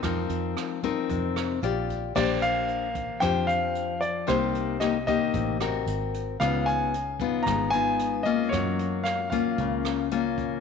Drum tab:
CC |--------|x-------|--------|--------|
HH |xxxxxxxx|-xxxxxxx|xxxxxxxx|xxxxxxxx|
SD |r-r--r--|r---r---|r-r--r--|r---r---|
BD |o--oo--o|o--oo---|o--oo---|o--oo---|

CC |--------|
HH |xxxxxxxx|
SD |r-r--r--|
BD |o--oo--o|